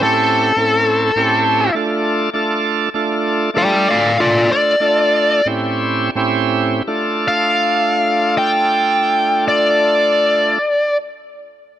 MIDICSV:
0, 0, Header, 1, 3, 480
1, 0, Start_track
1, 0, Key_signature, -1, "minor"
1, 0, Tempo, 594648
1, 1417, Time_signature, 4, 2, 24, 8
1, 2868, Tempo, 642398
1, 4308, Tempo, 703400
1, 5268, Tempo, 735294
1, 8471, End_track
2, 0, Start_track
2, 0, Title_t, "Lead electric guitar"
2, 0, Program_c, 0, 29
2, 24, Note_on_c, 0, 69, 82
2, 1402, Note_off_c, 0, 69, 0
2, 2887, Note_on_c, 0, 74, 71
2, 2889, Note_on_c, 0, 79, 81
2, 3102, Note_off_c, 0, 79, 0
2, 3109, Note_off_c, 0, 74, 0
2, 3121, Note_on_c, 0, 74, 69
2, 3132, Note_on_c, 0, 77, 83
2, 3329, Note_off_c, 0, 74, 0
2, 3343, Note_off_c, 0, 77, 0
2, 3353, Note_on_c, 0, 65, 73
2, 3357, Note_on_c, 0, 74, 77
2, 3565, Note_off_c, 0, 65, 0
2, 3576, Note_off_c, 0, 74, 0
2, 3593, Note_on_c, 0, 74, 88
2, 4297, Note_off_c, 0, 74, 0
2, 5524, Note_on_c, 0, 77, 90
2, 6215, Note_off_c, 0, 77, 0
2, 6244, Note_on_c, 0, 79, 91
2, 6935, Note_off_c, 0, 79, 0
2, 6962, Note_on_c, 0, 74, 80
2, 7932, Note_off_c, 0, 74, 0
2, 8471, End_track
3, 0, Start_track
3, 0, Title_t, "Tonewheel organ"
3, 0, Program_c, 1, 16
3, 0, Note_on_c, 1, 45, 82
3, 0, Note_on_c, 1, 60, 74
3, 0, Note_on_c, 1, 61, 75
3, 0, Note_on_c, 1, 64, 76
3, 0, Note_on_c, 1, 67, 95
3, 422, Note_off_c, 1, 45, 0
3, 423, Note_off_c, 1, 60, 0
3, 425, Note_off_c, 1, 61, 0
3, 427, Note_off_c, 1, 64, 0
3, 430, Note_off_c, 1, 67, 0
3, 456, Note_on_c, 1, 45, 75
3, 457, Note_on_c, 1, 60, 71
3, 466, Note_on_c, 1, 61, 72
3, 468, Note_on_c, 1, 64, 72
3, 472, Note_on_c, 1, 69, 85
3, 897, Note_off_c, 1, 45, 0
3, 897, Note_off_c, 1, 60, 0
3, 902, Note_off_c, 1, 61, 0
3, 903, Note_off_c, 1, 64, 0
3, 905, Note_off_c, 1, 69, 0
3, 934, Note_on_c, 1, 45, 95
3, 938, Note_on_c, 1, 60, 85
3, 944, Note_on_c, 1, 61, 90
3, 944, Note_on_c, 1, 64, 86
3, 948, Note_on_c, 1, 67, 105
3, 1374, Note_off_c, 1, 45, 0
3, 1376, Note_off_c, 1, 60, 0
3, 1379, Note_off_c, 1, 61, 0
3, 1379, Note_off_c, 1, 64, 0
3, 1381, Note_off_c, 1, 67, 0
3, 1407, Note_on_c, 1, 57, 90
3, 1415, Note_on_c, 1, 62, 85
3, 1420, Note_on_c, 1, 65, 84
3, 1424, Note_on_c, 1, 69, 100
3, 1850, Note_off_c, 1, 57, 0
3, 1854, Note_off_c, 1, 62, 0
3, 1856, Note_off_c, 1, 65, 0
3, 1858, Note_off_c, 1, 69, 0
3, 1885, Note_on_c, 1, 57, 86
3, 1889, Note_on_c, 1, 62, 77
3, 1895, Note_on_c, 1, 65, 78
3, 1901, Note_on_c, 1, 69, 91
3, 2332, Note_off_c, 1, 57, 0
3, 2334, Note_off_c, 1, 62, 0
3, 2337, Note_off_c, 1, 65, 0
3, 2340, Note_off_c, 1, 69, 0
3, 2374, Note_on_c, 1, 57, 90
3, 2376, Note_on_c, 1, 62, 88
3, 2383, Note_on_c, 1, 65, 79
3, 2389, Note_on_c, 1, 69, 98
3, 2826, Note_off_c, 1, 57, 0
3, 2827, Note_off_c, 1, 62, 0
3, 2831, Note_off_c, 1, 65, 0
3, 2833, Note_off_c, 1, 69, 0
3, 2858, Note_on_c, 1, 57, 74
3, 2863, Note_on_c, 1, 62, 61
3, 2869, Note_on_c, 1, 65, 69
3, 2874, Note_on_c, 1, 69, 79
3, 3290, Note_off_c, 1, 57, 0
3, 3293, Note_off_c, 1, 62, 0
3, 3295, Note_off_c, 1, 65, 0
3, 3298, Note_off_c, 1, 69, 0
3, 3323, Note_on_c, 1, 57, 67
3, 3329, Note_on_c, 1, 62, 63
3, 3330, Note_on_c, 1, 65, 62
3, 3336, Note_on_c, 1, 69, 73
3, 3767, Note_off_c, 1, 57, 0
3, 3770, Note_off_c, 1, 62, 0
3, 3771, Note_off_c, 1, 65, 0
3, 3773, Note_off_c, 1, 69, 0
3, 3801, Note_on_c, 1, 57, 78
3, 3805, Note_on_c, 1, 62, 73
3, 3810, Note_on_c, 1, 65, 72
3, 3815, Note_on_c, 1, 69, 87
3, 4260, Note_off_c, 1, 57, 0
3, 4262, Note_off_c, 1, 62, 0
3, 4265, Note_off_c, 1, 65, 0
3, 4267, Note_off_c, 1, 69, 0
3, 4290, Note_on_c, 1, 45, 92
3, 4296, Note_on_c, 1, 60, 80
3, 4297, Note_on_c, 1, 61, 81
3, 4303, Note_on_c, 1, 64, 83
3, 4305, Note_on_c, 1, 67, 95
3, 4730, Note_off_c, 1, 45, 0
3, 4733, Note_off_c, 1, 60, 0
3, 4733, Note_off_c, 1, 61, 0
3, 4735, Note_off_c, 1, 64, 0
3, 4737, Note_off_c, 1, 67, 0
3, 4766, Note_on_c, 1, 45, 92
3, 4772, Note_on_c, 1, 60, 83
3, 4775, Note_on_c, 1, 61, 83
3, 4778, Note_on_c, 1, 64, 82
3, 4780, Note_on_c, 1, 67, 106
3, 5221, Note_off_c, 1, 45, 0
3, 5224, Note_off_c, 1, 60, 0
3, 5225, Note_off_c, 1, 61, 0
3, 5227, Note_off_c, 1, 64, 0
3, 5228, Note_off_c, 1, 67, 0
3, 5260, Note_on_c, 1, 57, 74
3, 5260, Note_on_c, 1, 65, 67
3, 5260, Note_on_c, 1, 69, 84
3, 5262, Note_on_c, 1, 62, 68
3, 7682, Note_off_c, 1, 57, 0
3, 7682, Note_off_c, 1, 65, 0
3, 7682, Note_off_c, 1, 69, 0
3, 7683, Note_off_c, 1, 62, 0
3, 8471, End_track
0, 0, End_of_file